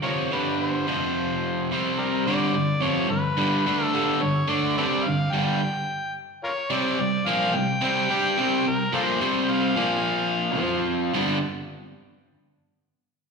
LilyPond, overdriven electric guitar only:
\new Staff \with { instrumentName = "Overdriven electric guitar" } { \clef bass \time 4/4 \key c \major \tempo 4 = 108 <f, c f>8 <g, d g>4 <f, c f>4. <c g c'>4 | <g, d g>8 <g, d>8 <f, c f>8 <g, d>8 <g, d g>8 <d a d'>8 <g, d g>8 <g, d>8 | <d a d'>8 <c g c'>8 <g, d>8 <g, d g>8 r2 | <c g c'>8 <c g>8 <bes, f bes>8 <c g>8 <c g c'>8 <g d' g'>8 <c g c'>8 <c g>8 |
<bes, f bes>8 <c g c'>4 <bes, f bes>4. <f c' f'>4 | <g, d g b d'>8 r2. r8 | }